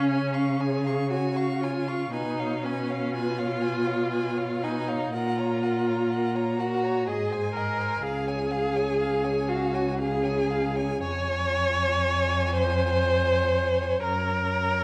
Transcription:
Already playing: C#3 C#4
0.09 C#5 G#5
0.33 F5 C#6
0.59 G#4 C#5 G#5
0.84 F5 C#6
1.09 F#4 C#5 G#5
1.36 F5 C#6
1.61 F4 C#5 G#5
1.87 F5 C#6
2.13 B2 D#4 B4 G#5
2.39 C#5 F5
2.64 C#4 B4 G#5
2.89 C#5 F5
3.14 F4 B4 G#5
3.38 C#5 F5
3.62 B4 G#5
3.87 C#5 F5
4.11 B4 G#5
4.36 C#5 F5
4.62 D#4 B4 G#5
4.88 C#5 F5
5.13 A#2 F4 A#4 F#5
5.38 C#5 A#5
5.62 A#4 F#5
5.87 C#5 A#5
6.12 A#4 F#5
6.35 C#5 A#5
6.58 F#4 A#4 F#5
6.83 C#5 A#5
7.07 G#2 G#4 D#5
7.31 C5 G#5
7.55 G#4 A#4 D#5
7.78 C5 G#5
8.02 C#2 G#4 F5
8.27 C#5 G#5
8.51 G#4 F5
8.75 C#5 G#5
9.00 G#4 F5
9.24 C#5 G#5
9.48 F#4 G#4 F5
9.73 C#5 G#5
9.98 G#4 F5
10.23 C#5 G#5
10.48 G#4 F5
10.76 C#5 G#5
11.01 F2 C#5 G#5
12.52 C5
14.02 F#2 A#4 A#5

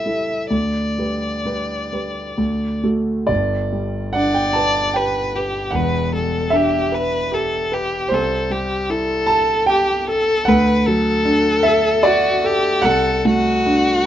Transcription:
Already playing: G3 E4 A4 E5
0.06 G3 E4 A4
0.50 D2 D5
0.98 G3 G4 B4
1.45 G3 G4 B4
1.92 G3 G4 B4
2.38 D2
2.84 A3 F#4 A4
3.27 G1 G2 D5
3.73 G3
4.13 D4 D5 F#5
4.34 G5
4.53 B4 A5
4.94 G4 B4 G5
5.36 G4 B4
5.71 E1 E2 F#5
5.75 B4
6.13 G3 A4
6.50 D4 E5
6.55 G4
6.92 B4
7.32 G4 A4
7.72 G4 B4
8.09 C2 C5
8.14 A4
8.50 G3 G4
8.89 E4 A4
9.27 A4 A5
9.66 G4 G5
10.08 A4
10.45 D2 B4 F#5
10.86 F#3 A4
11.25 D4
11.63 A4 E5
12.03 F#4 D5
12.44 G4 A4
12.82 C2 A4 F#5
13.25 A3 F#4
13.66 D4

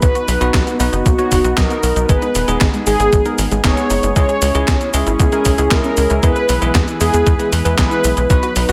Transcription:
0.02 B1 B3 D#4 F#4 B4, kick, closed hi-hat, cabasa
0.15 F#4, closed hi-hat, cabasa
0.28 B1 F#3, open hi-hat, cabasa
0.41 B1 B3 D#4 F#4 B4, closed hi-hat, cabasa
0.54 B1 F#3, kick, snare, clap, closed hi-hat, cabasa
0.67 B3, closed hi-hat, cabasa
0.80 B1 B3 D#4 F#4 B4, open hi-hat, cabasa
0.93 F#1 D#4, closed hi-hat, cabasa
1.06 B1 A#3 F#4, kick, closed hi-hat, cabasa
1.18 B3 D#4 F#4 C#5, closed hi-hat, cabasa
1.32 F#1 B3, kick, open hi-hat, cabasa
1.44 B1 B3 D#4 F#4 B4, closed hi-hat, cabasa
1.57 B1 F#3 B3 D#4 F#4 A#4 D#5, kick, snare, clap, closed hi-hat, cabasa
1.70 B3, closed hi-hat, cabasa
1.83 B1 B3, open hi-hat, cabasa
1.96 B1 D#4, closed hi-hat, cabasa
2.09 G#1 G#3 B3 D#4 G#4 B4, kick, closed hi-hat, cabasa
2.22 D#4, closed hi-hat, cabasa
2.35 D#1 D#3, open hi-hat, cabasa
2.48 D#1 G#3 B3 D#4 G#4, closed hi-hat, cabasa
2.61 G#1 D#3, kick, snare, clap, closed hi-hat, cabasa
2.74 G#3, closed hi-hat, cabasa
2.86 G#1 G#3 B3 D#4 G#4, open hi-hat, cabasa
3.00 G#1 B3, closed hi-hat, cabasa
3.13 G#1 F#3, kick, closed hi-hat, cabasa
3.26 G#3 B3 D#4 A#4, closed hi-hat, cabasa
3.38 G#1 D#3, open hi-hat, cabasa
3.51 G#1 G#3 B3 D#4 G#4, closed hi-hat, cabasa
3.64 F#1 D#3 G#3 B3 D#4 G#4 C#5, kick, snare, clap, closed hi-hat, cabasa
3.77 G#4, closed hi-hat, cabasa
3.90 F#1 D#4, open hi-hat, cabasa
4.03 F#1 G#3, closed hi-hat, cabasa
4.16 C#2 G#3 C#4 E4 G#4 C#5, kick, closed hi-hat, cabasa
4.29 G#4, closed hi-hat, cabasa
4.42 C#2 G#3, open hi-hat, cabasa
4.55 C#2 G#3 C#4 E4 G#4, closed hi-hat, cabasa
4.68 C#2 G#3, kick, snare, clap, closed hi-hat, cabasa
4.81 C#4, closed hi-hat, cabasa
4.94 C#2 G#3 C#4 E4 G#4, open hi-hat, cabasa
5.07 G#1 E4, closed hi-hat, cabasa
5.20 C#2 B3 G#4, kick, closed hi-hat, cabasa
5.32 G#3 C#4 E4 G#4 A#4, closed hi-hat, cabasa
5.45 B1 C#4, kick, open hi-hat, cabasa
5.58 C#2 G#3 C#4 E4 G#4, closed hi-hat, cabasa
5.71 C#2 G#3 C#4 E4 G#4 A#4, kick, snare, clap, closed hi-hat, cabasa
5.84 C#4, closed hi-hat, cabasa
5.97 C#2 C#4, open hi-hat, cabasa
6.10 C#2 E4, closed hi-hat, cabasa
6.23 E2 E3 G#3 B3 E4 G#4 B4, kick, closed hi-hat, cabasa
6.36 B4, closed hi-hat, cabasa
6.49 B1 B3, open hi-hat, cabasa
6.62 B1 G#3 B3 E4 G#4 B4, closed hi-hat, cabasa
6.75 E2 B3, kick, snare, clap, closed hi-hat, cabasa
6.88 E4, closed hi-hat, cabasa
7.00 E2 G#3 B3 E4 G#4, open hi-hat, cabasa
7.13 E2 G#4, closed hi-hat, cabasa
7.26 E2 D#4, kick, closed hi-hat, cabasa
7.39 G#3 B3 E4 B4, closed hi-hat, cabasa
7.52 E2 E4, open hi-hat, cabasa
7.65 E2 G#3 B3 E4 G#4 B4, closed hi-hat, cabasa
7.78 B1 G#3 B3 E4 G#4 B4, kick, snare, clap, closed hi-hat, cabasa
7.91 E4, closed hi-hat, cabasa
8.04 B1 E4, open hi-hat, cabasa
8.17 B1 G#4, closed hi-hat, cabasa
8.30 B1 F#3 B3 D#4 F#4 B4, kick, closed hi-hat, cabasa
8.43 F#4, closed hi-hat, cabasa
8.56 B1 F#3, open hi-hat, cabasa
8.69 B1 B3 D#4 F#4 B4, closed hi-hat, cabasa

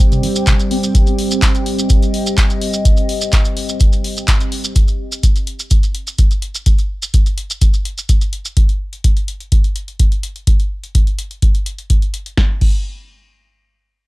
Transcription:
Already playing: G3 C4 G4 C5 D5 G5
0.00 maracas
0.12 C3, closed hi-hat, maracas
0.23 D#3, open hi-hat
0.36 closed hi-hat, maracas
0.47 C3, kick, clap, closed hi-hat, maracas
0.60 closed hi-hat, maracas
0.71 C4, open hi-hat
0.83 closed hi-hat, maracas
0.95 kick, closed hi-hat, maracas
1.07 closed hi-hat, maracas
1.19 open hi-hat
1.31 closed hi-hat, maracas
1.42 kick, clap, closed hi-hat, maracas
1.55 closed hi-hat, maracas
1.59 D#5
1.66 open hi-hat
1.79 closed hi-hat, maracas
1.90 kick, closed hi-hat, maracas
2.02 closed hi-hat, maracas
2.14 open hi-hat
2.26 closed hi-hat, maracas
2.38 kick, clap, closed hi-hat, maracas
2.50 closed hi-hat, maracas
2.61 open hi-hat
2.73 closed hi-hat, maracas
2.85 kick, closed hi-hat, maracas
2.97 closed hi-hat, maracas
3.09 open hi-hat
3.21 closed hi-hat, maracas
3.32 kick, clap, closed hi-hat, maracas
3.45 closed hi-hat, maracas
3.57 open hi-hat
3.69 closed hi-hat, maracas
3.80 kick, closed hi-hat, maracas
3.93 closed hi-hat, maracas
4.04 open hi-hat
4.17 closed hi-hat, maracas
4.28 kick, clap, closed hi-hat, maracas
4.40 closed hi-hat, maracas
4.52 open hi-hat
4.64 closed hi-hat, maracas
4.76 kick, closed hi-hat, maracas
4.88 closed hi-hat, maracas
5.12 closed hi-hat, maracas
5.23 kick, closed hi-hat, maracas
5.36 closed hi-hat, maracas
5.47 closed hi-hat
5.59 closed hi-hat, maracas
5.71 kick, closed hi-hat, maracas
5.83 closed hi-hat, maracas
5.95 closed hi-hat
6.07 closed hi-hat, maracas
6.18 kick, closed hi-hat, maracas
6.31 closed hi-hat, maracas
6.42 closed hi-hat
6.55 closed hi-hat, maracas
6.66 kick, closed hi-hat, maracas
6.79 closed hi-hat, maracas
7.02 closed hi-hat, maracas
7.14 kick, closed hi-hat, maracas
7.26 closed hi-hat, maracas
7.38 closed hi-hat
7.50 closed hi-hat, maracas
7.62 kick, closed hi-hat, maracas
7.74 closed hi-hat, maracas
7.85 closed hi-hat
7.98 closed hi-hat, maracas
8.09 kick, closed hi-hat, maracas
8.21 closed hi-hat, maracas
8.33 closed hi-hat
8.45 closed hi-hat, maracas
8.57 kick, closed hi-hat
8.69 closed hi-hat
8.93 closed hi-hat
9.04 kick, closed hi-hat
9.17 closed hi-hat
9.28 closed hi-hat
9.40 closed hi-hat
9.52 kick, closed hi-hat
9.64 closed hi-hat
9.76 closed hi-hat
9.88 closed hi-hat
10.00 kick, closed hi-hat
10.12 closed hi-hat
10.23 closed hi-hat
10.36 closed hi-hat
10.47 kick, closed hi-hat
10.60 closed hi-hat
10.84 closed hi-hat
10.95 kick, closed hi-hat
11.07 closed hi-hat
11.19 closed hi-hat
11.31 closed hi-hat
11.42 kick, closed hi-hat
11.55 closed hi-hat
11.66 closed hi-hat
11.78 closed hi-hat
11.90 kick, closed hi-hat
12.02 closed hi-hat
12.14 closed hi-hat
12.26 closed hi-hat
12.37 kick, snare
12.61 kick, crash

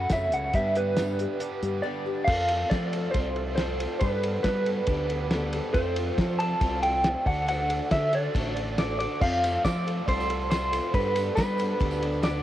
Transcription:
Already playing: F#2 C#3 F#3 A3 C#4 F#4 A4 F#5
0.09 F#2 C#3 F#3 A3 C#4 F#4 E5, kick, snare, closed hi-hat, tambourine
0.32 C#2 F#3 A3 C#4 F#4 F#5, closed hi-hat
0.53 G2 D3 G3 B3 D4 G4 B4 E5, kick, closed hi-hat
0.75 G3 B3 D4 G4 B4, closed hi-hat
0.96 G2 D3 G3 B3 D4 G4, snare, closed hi-hat, tambourine
1.19 G3 B3 D4 G4, closed hi-hat
1.39 G2 D3 G3 B3 D4 G4, closed hi-hat
1.63 G2 G3 B3 D4 G4, closed hi-hat
1.82 G2 D3 G3 B3 D4 G4 D5
2.06 G3 B3 D4 G4
2.24 F2 F3 A3 C4 F4 A4 C5 F5, kick, crash
2.28 F4 A4
2.48 C4 F4 A4, ride
2.70 F3 A3 C4 F4 A4 D5, kick, snare, ride
2.93 C4 F4 A4, ride
3.11 C2 F3 A3 C5, kick, ride
3.15 C4 F4 A4
3.35 C4 F4 A4, ride
3.56 F3 A3 C4 F4 A4 C5, snare, ride
3.80 C4 F4 A4, ride
4.00 G2 G3 B3 D4 G4 A4 B4, kick, ride
4.23 B3 D4 A4, ride
4.43 G3 B3 D4 B4, kick, snare, ride
4.47 A4
4.65 B3 D4 A4 B4, ride
4.87 D2 G3 B3 D4 A4 B4, kick, ride
5.08 B3 D4 A4 B4, ride
5.31 G3 B3 D4 A4 B4, snare, ride
5.53 B3 D4 A4, ride
5.74 F2 F3 A3 C4 F4 A4 C5, kick, ride
5.78 F4 A4
5.96 C4 F4 A4, ride
6.18 F3 A3 C4 F4, kick, snare, ride
6.22 A4
6.39 C4 F4 A4 A5, ride
6.61 C2 F3 A3 C4 F4 A4, kick, ride
6.82 C4 F4 A4 G5, ride
7.04 F3 A3 C4 F4 A4, snare, ride
7.26 D2 D3 A3 D4 F#4 A4 D5 F#5, kick, ride
7.46 D3 F#3 A3 D4 F#4 A4 F#5, ride
7.69 A3 D4 A4, ride
7.90 D3 F#3 A3 D4 F#4 A4 E5, kick, snare, ride
8.13 A3 D4 F#4 A4 D5, ride
8.34 A1 D3 F#3 A3 D4 F#4 A4, kick, ride
8.56 A3 D4 F#4 A4, ride
8.76 D3 F#3 A3 D4 F#4 A4 D5, snare, ride
8.99 A3 D4 A4 D5, ride
9.20 F2 F3 A3 C4 F4 A4 C5 F5, kick, crash
9.44 C4 F4 A4, ride, tambourine
9.64 F3 A3 C4 F4 D5, kick, snare, ride, tambourine
9.68 A4
9.86 C4 F4 A4, ride
10.06 C2 F3 A3 C4 F4 A4 C5, kick, ride, tambourine
10.20 tambourine
10.29 C4 F4 A4, ride
10.41 tambourine
10.51 F3 A3 C4 F4 A4 C5, snare, ride, tambourine
10.72 C4 F4 A4, ride, tambourine
10.94 G2 G3 B3 D4 G4 A4 B4, kick, ride
11.15 B3 D4 A4, ride, tambourine
11.36 G3 B3 D4 A4 B4, kick, snare, ride, tambourine
11.58 B3 D4 A4 B4, ride, tambourine
11.80 D2 G3 B3 D4 A4 B4, kick, ride, tambourine
11.91 tambourine
12.01 B3 D4 A4 B4, ride
12.12 tambourine
12.23 G3 B3 D4 A4 B4 D5, snare, ride, tambourine

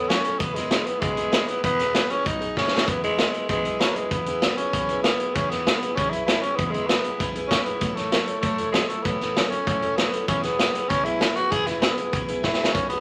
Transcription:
Already playing: E2 B3
0.09 F#3 C#4 E4 A4 C#5, snare, closed hi-hat
0.25 E4 A4 C#5, muted upright bass stroke, closed hi-hat
0.39 E1 C#3 E3 B3 E4 G#4 B4, kick, closed hi-hat
0.54 G#3 B3 E4 G#4 B4, snare, closed hi-hat
0.71 B3 E4 G#4 B4, snare, closed hi-hat
0.86 B3 E4 G#4 B4, muted upright bass stroke, closed hi-hat
1.00 B1 C#3 E3 G#3 B3 E4 G#4 B4, kick, closed hi-hat
1.17 B3 E4 G#4 B4, closed hi-hat
1.32 B3 E4 B4, snare, closed hi-hat
1.47 B3 E4 G#4 B4, muted upright bass stroke, closed hi-hat
1.64 E1 C#3 E3 B3 E4 G#4 B4, kick, closed hi-hat
1.79 B3 E4 G#4 B4, snare, closed hi-hat
1.94 B3 E4 G#4 B4, snare, closed hi-hat
2.10 B3 C#4 E4 G#4 B4, muted upright bass stroke, closed hi-hat
2.25 B1 B3 D#4 F#4 G#4, kick, closed hi-hat
2.40 D#4 F#4 G#4, closed hi-hat
2.56 B3 C#4 D#4 F#4 G#4, kick, snare
2.67 snare
2.72 D#4 F#4 G#4, muted upright bass stroke
2.77 snare
2.87 E2 C#3 E3 B3 E4 G#4 B4, kick, closed hi-hat
3.04 G#3 B3 E4 G#4 B4, closed hi-hat
3.18 B3 E4 G#4 B4, snare, closed hi-hat
3.34 B3 E4 G#4 B4, muted upright bass stroke, closed hi-hat
3.49 B1 C#3 E3 G#3 B3 E4 G#4 B4, kick, closed hi-hat
3.65 B3 E4 G#4 B4, closed hi-hat
3.79 F#3 B3 E4 G#4 B4, snare, closed hi-hat
3.95 G#3 B3 E4 G#4 B4, muted upright bass stroke, closed hi-hat
4.11 E2 C#3 E3 B3 E4 G#4 B4, kick, closed hi-hat
4.26 B3 E4 G#4 B4, closed hi-hat
4.42 B3 E4 G#4 B4, snare, closed hi-hat
4.56 B3 C#4 E4 G#4 B4, muted upright bass stroke, closed hi-hat
4.73 B1 C#3 E3 B3 E4 G#4 B4, kick, closed hi-hat
4.89 B3 E4 G#4 B4, closed hi-hat
5.02 B3 E4, snare, closed hi-hat
5.07 G#4 B4
5.19 B3 E4 G#4 B4, muted upright bass stroke, closed hi-hat
5.35 E2 C#3 E3 B3 C#4 E4 G#4 B4, kick, closed hi-hat
5.50 B3 E4 G#4 B4, snare, closed hi-hat
5.67 B3 E4 G#4 B4, snare, closed hi-hat
5.82 B3 E4 G#4 B4, muted upright bass stroke, closed hi-hat
5.95 B1 C#3 E3 B3 C#4 E4 G#4 B4, kick, closed hi-hat
6.10 E4 G#4 B4, closed hi-hat
6.15 B3
6.26 B3 E4, snare, closed hi-hat
6.30 E4 G#4 B4
6.41 C#4 G#4 B4, muted upright bass stroke, closed hi-hat
6.45 B3 E4
6.55 E2 E3 B3, kick, closed hi-hat
6.59 C#3 B3 E4 G#4 B4
6.70 G#3 G#4 B4, closed hi-hat
6.75 B3 E4
6.86 B3 E4, snare, closed hi-hat
6.91 G#4 B4
7.04 B3 E4 G#4 B4, muted upright bass stroke, closed hi-hat
7.20 B1 C#3 E3 B3 E4 G#4 B4, kick, closed hi-hat
7.35 B3 E4 G#4 B4, closed hi-hat
7.47 B3 C#4, kick, snare, closed hi-hat
7.51 E4 G#4 B4
7.63 B3 G#4, closed hi-hat
7.67 B3 E4 B4, muted upright bass stroke
7.81 A1 F#3 A3 E4 A4 C#5, kick, closed hi-hat
7.95 A3 A4 C#5, snare, closed hi-hat
7.99 E4
8.12 F#3 E4 A4 C#5, snare, closed hi-hat
8.26 E4 A4 C#5, muted upright bass stroke, closed hi-hat
8.41 E1 F#3 A3 E4 A4 C#5, kick, closed hi-hat
8.58 E4 A4 C#5, closed hi-hat
8.72 F#3 G#3, snare, closed hi-hat
8.76 C#5
8.88 A3 E4 A4 C#5, muted upright bass stroke, closed hi-hat
9.03 A1 F#3 A3 B3 E4 A4 C#5, kick, closed hi-hat
9.21 E4 A4 C#5, snare, closed hi-hat
9.35 F#3 E4 A4 C#5, snare, closed hi-hat
9.50 C#4 E4 A4 C#5, muted upright bass stroke, closed hi-hat
9.66 E1 F#3 A3 E4 A4 C#5, kick, closed hi-hat
9.82 E4 A4 C#5, closed hi-hat
9.96 F#3 B3 E4 A4 C#5, snare, closed hi-hat
10.13 E4 A4 C#5, muted upright bass stroke, closed hi-hat
10.27 E1 C#3 E3 B3 C#4 E4 G#4 B4, kick, closed hi-hat
10.42 B3 E4 G#4 B4, snare, closed hi-hat
10.59 B3 E4 G#4 B4, snare, closed hi-hat
10.74 B3 E4 G#4 B4, muted upright bass stroke, closed hi-hat
10.89 B1 C#3 E3 B3 C#4 E4 G#4 B4, kick, closed hi-hat
11.04 B3 E4 G#4 B4, closed hi-hat
11.21 B3 E4 G#4 B4, snare, closed hi-hat
11.35 B3 E4 F#4 G#4 B4, muted upright bass stroke, closed hi-hat
11.51 E1 C#3 E3 B3 E4 G#4 B4, kick, closed hi-hat
11.66 B3 E4 G#4 B4, snare, closed hi-hat
11.81 B3 E4 G#4 B4, snare, closed hi-hat
11.97 B3 E4 G#4 B4, muted upright bass stroke, closed hi-hat
12.13 B1 C#3 E3 B3 E4 G#4 B4, kick, closed hi-hat
12.28 B3 E4 G#4 B4, closed hi-hat
12.42 B3 E4 G#4 B4, kick, snare
12.54 snare
12.58 B3 E4 G#4 B4, muted upright bass stroke
12.64 snare
12.72 B1 B3 C#4 D#4 F#4 G#4, kick, closed hi-hat
12.89 B3 D#4 F#4 G#4, closed hi-hat

